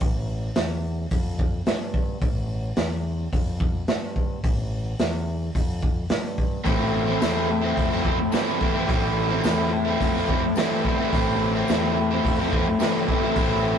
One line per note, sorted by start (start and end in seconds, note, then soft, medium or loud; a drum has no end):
0.00 0.50 A1 medium
0.00 kick loud
0.00 open hi-hat medium
0.55 1.05 E2 medium
0.55 snare loud
0.55 open hi-hat medium
1.11 1.60 F2 loud
1.11 kick medium
1.11 open hi-hat medium
1.39 kick medium
1.66 2.16 G2 medium
1.66 snare loud
1.66 open hi-hat medium
1.94 kick medium
2.21 2.70 A1 medium
2.21 kick loud
2.21 open hi-hat soft
2.76 3.26 E2 medium
2.76 snare loud
2.76 open hi-hat medium
3.33 3.82 F2 loud
3.33 kick medium
3.33 open hi-hat medium
3.60 kick medium
3.88 4.38 G2 medium
3.88 snare loud
3.88 open hi-hat medium
4.16 kick medium
4.44 4.93 A1 medium
4.44 kick loud
4.44 open hi-hat medium
4.99 5.48 E2 medium
4.99 snare loud
4.99 open hi-hat medium
5.55 6.04 F2 medium
5.55 kick medium
5.55 open hi-hat medium
5.82 kick medium
6.10 6.60 G2 medium
6.10 snare loud
6.10 open hi-hat medium
6.38 kick medium
6.64 7.15 A1 medium
6.64 7.20 A2 medium
6.64 7.22 E3 medium
6.64 7.10 A3 medium
6.64 7.09 C4 loud
6.64 11.08 A4 medium
6.64 11.09 C5 medium
6.64 kick loud
6.64 open hi-hat medium
6.68 7.06 E4 medium
6.68 11.10 E5 medium
7.07 7.22 A3 medium
7.07 7.23 C4 medium
7.07 7.24 E4 medium
7.21 7.72 E2 medium
7.21 8.31 A2 medium
7.21 7.49 E3 medium
7.21 7.50 A3 loud
7.21 7.50 C4 loud
7.21 7.50 E4 medium
7.21 snare loud
7.21 open hi-hat medium
7.21 tambourine medium
7.49 muted overdriven electric guitar stroke soft
7.62 7.93 A3 medium
7.62 7.92 C4 medium
7.62 7.90 E4 medium
7.77 8.27 F2 loud
7.77 kick medium
7.77 open hi-hat medium
7.91 8.05 A3 medium
7.91 8.06 C4 medium
7.91 8.07 E4 medium
8.04 8.19 E3 medium
8.04 8.19 A3 medium
8.04 8.19 C4 medium
8.04 8.18 E4 medium
8.04 kick medium
8.19 muted overdriven electric guitar stroke medium
8.32 8.82 G2 medium
8.32 8.85 A2 medium
8.32 8.59 E3 medium
8.32 8.60 A3 medium
8.32 8.62 C4 loud
8.32 8.62 E4 loud
8.32 snare loud
8.32 open hi-hat medium
8.32 tambourine medium
8.59 8.87 E3 medium
8.59 8.76 A3 medium
8.59 8.75 C4 medium
8.59 8.73 E4 medium
8.59 kick medium
8.73 8.88 A3 medium
8.73 8.89 C4 medium
8.73 8.89 E4 medium
8.86 9.38 A1 medium
8.86 9.42 A2 medium
8.86 9.43 E3 medium
8.86 9.31 A3 medium
8.86 9.30 C4 medium
8.86 9.28 E4 loud
8.86 kick loud
8.86 open hi-hat medium
9.28 9.44 A3 medium
9.28 9.45 C4 medium
9.28 9.46 E4 medium
9.43 9.94 E2 medium
9.43 10.56 A2 medium
9.43 9.72 E3 medium
9.43 9.72 A3 loud
9.43 9.73 C4 loud
9.43 9.73 E4 loud
9.43 snare loud
9.43 open hi-hat medium
9.43 tambourine medium
9.72 muted overdriven electric guitar stroke soft
9.85 10.18 A3 medium
9.85 10.16 C4 medium
9.85 10.14 E4 medium
10.00 10.50 F2 loud
10.00 kick medium
10.00 open hi-hat medium
10.14 10.29 A3 medium
10.14 10.31 C4 medium
10.14 10.31 E4 medium
10.28 10.44 E3 medium
10.28 10.44 A3 medium
10.28 10.44 C4 medium
10.28 10.43 E4 medium
10.28 kick medium
10.44 muted overdriven electric guitar stroke medium
10.56 11.06 G2 medium
10.56 11.12 A2 medium
10.56 10.85 E3 medium
10.56 10.85 A3 loud
10.56 snare loud
10.56 open hi-hat medium
10.56 tambourine loud
10.60 10.86 C4 medium
10.60 10.88 E4 medium
10.85 11.13 E3 medium
10.85 11.01 A3 medium
10.85 11.00 C4 medium
10.85 10.98 E4 medium
10.85 kick medium
10.98 11.14 A3 medium
10.98 11.15 C4 medium
10.98 11.16 E4 medium
11.10 11.62 A1 loud
11.10 11.69 A2 medium
11.10 11.69 E3 medium
11.10 13.78 A4 medium
11.10 13.78 C5 medium
11.10 13.78 E5 medium
11.10 kick loud
11.14 11.58 A3 medium
11.14 11.56 C4 medium
11.14 11.54 E4 medium
11.14 open hi-hat medium
11.55 11.70 A3 medium
11.55 11.71 C4 medium
11.55 11.72 E4 medium
11.68 12.18 E2 medium
11.68 12.79 A2 loud
11.68 11.98 E3 loud
11.68 11.98 A3 loud
11.68 11.99 C4 loud
11.68 snare loud
11.68 open hi-hat medium
11.68 tambourine medium
11.73 11.99 E4 loud
11.98 muted overdriven electric guitar stroke soft
12.11 12.42 A3 medium
12.11 12.40 C4 medium
12.11 12.38 E4 medium
12.25 12.74 F2 loud
12.25 kick medium
12.25 open hi-hat medium
12.39 12.53 A3 medium
12.39 12.54 C4 medium
12.39 12.55 E4 medium
12.53 12.68 E3 medium
12.53 12.67 A3 medium
12.53 12.67 C4 medium
12.53 12.67 E4 medium
12.53 kick medium
12.68 muted overdriven electric guitar stroke medium
12.80 13.30 G2 medium
12.80 13.36 A2 medium
12.80 13.07 E3 medium
12.80 13.09 A3 loud
12.80 13.10 C4 medium
12.80 13.11 E4 loud
12.80 snare loud
12.80 open hi-hat medium
12.80 tambourine medium
13.08 13.37 E3 medium
13.08 13.25 A3 medium
13.08 13.24 C4 medium
13.08 13.22 E4 medium
13.08 kick medium
13.23 13.38 A3 medium
13.23 13.38 C4 medium
13.23 13.39 E4 medium
13.36 13.78 A1 medium
13.36 13.78 A2 medium
13.36 13.78 E3 medium
13.36 13.78 A3 medium
13.36 13.78 C4 medium
13.36 kick loud
13.36 open hi-hat medium
13.40 13.77 E4 medium